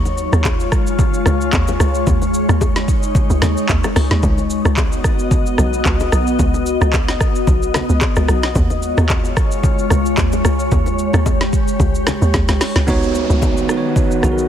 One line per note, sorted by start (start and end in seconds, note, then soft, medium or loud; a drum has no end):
0.00 0.28 D#2 loud
0.00 4.19 G#3 medium
0.00 2.05 F4 medium
0.00 4.19 C#5 medium
0.05 low bongo medium
0.05 shaker soft
0.18 shaker loud
0.32 0.68 D#2 loud
0.32 cross-stick medium
0.32 shaker soft
0.45 kick loud
0.45 clap loud
0.45 high bongo medium
0.45 shaker medium
0.60 shaker medium
0.72 kick medium
0.72 cross-stick medium
0.72 shaker medium
0.87 shaker medium
0.99 kick loud
0.99 low conga medium
0.99 shaker medium
1.14 shaker medium
1.26 1.50 C#2 loud
1.26 cross-stick loud
1.26 low bongo medium
1.26 low conga medium
1.26 shaker loud
1.41 shaker medium
1.53 1.77 D#2 loud
1.53 kick loud
1.53 clap loud
1.53 high bongo medium
1.53 shaker loud
1.68 high bongo medium
1.68 low bongo medium
1.68 shaker medium
1.80 2.04 C#2 loud
1.80 cross-stick loud
1.80 shaker loud
1.95 shaker medium
2.07 2.45 D#2 loud
2.07 4.21 D#4 medium
2.07 kick loud
2.07 low conga medium
2.07 shaker medium
2.22 low bongo medium
2.22 shaker soft
2.34 shaker loud
2.49 2.84 D#2 loud
2.49 cross-stick medium
2.49 shaker medium
2.61 kick loud
2.61 high bongo medium
2.61 shaker medium
2.76 snare medium
2.76 shaker medium
2.88 kick loud
2.88 shaker medium
3.03 shaker medium
3.15 kick loud
3.15 low conga medium
3.15 shaker medium
3.30 3.41 C#2 loud
3.30 shaker medium
3.42 3.55 D#2 medium
3.42 cross-stick medium
3.42 snare medium
3.42 low bongo medium
3.42 low conga medium
3.42 shaker loud
3.57 shaker medium
3.69 3.83 D#2 loud
3.69 kick loud
3.69 clap loud
3.69 high bongo medium
3.69 shaker medium
3.84 cross-stick medium
3.84 high bongo medium
3.84 low bongo medium
3.84 shaker medium
3.96 4.09 C#2 loud
3.96 cross-stick loud
3.96 open hi-hat medium
3.96 high bongo medium
3.96 shaker loud
4.11 4.22 D#2 medium
4.11 snare medium
4.11 shaker medium
4.23 4.61 C#2 loud
4.23 8.52 B3 medium
4.23 8.52 F#4 medium
4.23 8.52 D#5 medium
4.23 kick loud
4.23 low conga medium
4.23 shaker medium
4.38 low bongo medium
4.38 shaker soft
4.50 shaker loud
4.65 5.00 C#2 loud
4.65 cross-stick medium
4.65 shaker soft
4.77 kick loud
4.77 clap loud
4.77 high bongo medium
4.77 shaker medium
4.92 shaker medium
5.04 kick loud
5.04 cross-stick medium
5.04 shaker medium
5.19 shaker medium
5.31 kick loud
5.31 low conga medium
5.31 shaker medium
5.46 shaker medium
5.58 5.83 B1 medium
5.58 cross-stick medium
5.58 low bongo medium
5.58 low conga medium
5.58 shaker loud
5.73 shaker medium
5.85 6.10 C#2 loud
5.85 kick medium
5.85 clap loud
5.85 high bongo medium
5.85 shaker loud
6.00 high bongo soft
6.00 low bongo medium
6.00 shaker medium
6.12 6.37 B1 medium
6.12 cross-stick loud
6.12 shaker loud
6.27 shaker medium
6.39 6.77 C#2 loud
6.39 kick loud
6.39 low conga medium
6.39 shaker medium
6.54 low bongo medium
6.54 shaker soft
6.66 shaker loud
6.81 7.16 C#2 loud
6.81 cross-stick medium
6.81 shaker soft
6.93 kick loud
6.93 clap loud
6.93 high bongo medium
6.93 shaker medium
7.08 snare medium
7.08 shaker medium
7.21 kick loud
7.21 cross-stick medium
7.21 shaker medium
7.35 shaker medium
7.47 7.85 B1 loud
7.47 kick loud
7.47 low conga medium
7.47 shaker medium
7.63 shaker medium
7.74 cross-stick loud
7.74 snare medium
7.74 low bongo medium
7.74 low conga medium
7.74 shaker loud
7.89 8.00 C#2 medium
7.89 shaker medium
8.01 kick medium
8.01 clap loud
8.01 high bongo medium
8.01 shaker loud
8.16 8.27 C#2 medium
8.16 cross-stick medium
8.16 high bongo medium
8.16 low bongo medium
8.16 shaker medium
8.28 8.53 B1 medium
8.28 cross-stick loud
8.28 shaker loud
8.43 snare medium
8.43 shaker medium
8.55 8.93 D#2 loud
8.55 12.84 G#3 medium
8.55 10.70 F4 medium
8.55 12.84 C#5 loud
8.55 kick loud
8.55 low conga medium
8.55 shaker medium
8.70 low bongo medium
8.70 shaker soft
8.83 shaker loud
8.97 9.33 D#2 loud
8.97 cross-stick loud
8.97 shaker medium
9.09 kick loud
9.09 clap loud
9.09 high bongo medium
9.09 shaker medium
9.25 shaker medium
9.37 kick loud
9.37 cross-stick medium
9.37 shaker medium
9.52 shaker medium
9.63 kick loud
9.63 low conga medium
9.63 shaker medium
9.79 shaker medium
9.90 10.15 C#2 loud
9.90 cross-stick medium
9.90 low bongo medium
9.90 low conga medium
9.90 shaker loud
10.06 shaker medium
10.17 10.42 D#2 loud
10.17 kick medium
10.17 clap loud
10.17 high bongo medium
10.17 shaker medium
10.32 high bongo medium
10.32 low bongo medium
10.32 shaker medium
10.45 10.69 C#2 medium
10.45 cross-stick loud
10.45 shaker loud
10.59 shaker medium
10.72 11.09 D#2 loud
10.72 12.86 G4 medium
10.72 kick loud
10.72 low conga medium
10.72 shaker medium
10.86 low bongo medium
10.86 shaker soft
10.99 shaker loud
11.13 11.49 D#2 loud
11.13 cross-stick medium
11.13 low bongo medium
11.13 shaker soft
11.26 kick loud
11.26 high bongo medium
11.26 shaker medium
11.41 snare medium
11.41 shaker medium
11.53 kick medium
11.53 shaker medium
11.68 shaker medium
11.79 12.17 C#2 medium
11.79 kick loud
11.79 low conga medium
11.79 shaker medium
11.95 shaker medium
12.07 cross-stick medium
12.07 snare medium
12.07 low bongo medium
12.07 low conga medium
12.07 shaker loud
12.22 12.33 D#2 loud
12.22 shaker medium
12.34 12.47 D#2 loud
12.34 kick medium
12.34 snare medium
12.34 high bongo medium
12.34 shaker medium
12.48 12.60 C#2 medium
12.48 snare medium
12.48 high bongo soft
12.48 low bongo medium
12.48 shaker medium
12.61 snare loud
12.61 open hi-hat medium
12.61 shaker loud
12.76 12.87 C#2 medium
12.76 snare loud
12.76 shaker medium
12.87 13.26 C#2 loud
12.87 14.48 D#3 medium
12.87 13.53 B3 loud
12.87 14.48 B3 medium
12.87 13.54 D#4 loud
12.87 14.48 F#4 medium
12.87 13.54 F#4 loud
12.87 13.55 C#5 loud
12.87 kick loud
12.87 downlifter medium
12.87 low conga medium
12.87 shaker medium
13.03 shaker soft
13.15 shaker medium
13.30 13.65 C#2 loud
13.30 shaker soft
13.42 kick medium
13.42 high bongo medium
13.42 shaker medium
13.57 shaker medium
13.68 14.13 B3 medium
13.68 14.13 D#4 medium
13.68 14.14 F#4 medium
13.68 13.77 B4 medium
13.68 cross-stick medium
13.68 shaker medium
13.78 14.18 C#5 medium
13.96 kick loud
13.96 low conga medium
13.96 shaker medium
14.11 shaker medium
14.22 14.47 B1 medium
14.22 14.48 B3 medium
14.22 14.48 D#4 medium
14.22 14.48 F#4 medium
14.22 14.31 G#4 medium
14.22 cross-stick medium
14.22 low bongo medium
14.22 low conga medium
14.22 shaker medium
14.32 14.48 A#4 medium
14.38 shaker medium